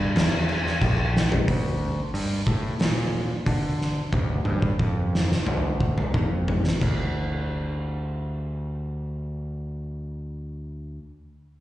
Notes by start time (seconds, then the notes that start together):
Already playing: G2
0.16 E2, snare, crash
0.49 crash
0.67 snare
0.81 A#1, kick, crash
1.17 snare
1.32 floor tom
1.48 D2, kick, open hi-hat
2.14 G2, open hi-hat
2.47 A2, kick
2.79 A#2, snare, open hi-hat
3.46 D3, kick, open hi-hat
3.81 snare
4.12 D2, kick, high tom
4.45 G2, high tom
4.62 kick
4.79 F2, kick
5.15 snare
5.32 snare
5.46 D2, mid tom
5.80 kick
5.98 mid tom
6.14 F2, kick, floor tom
6.48 floor tom
6.67 snare
6.82 D2, kick, crash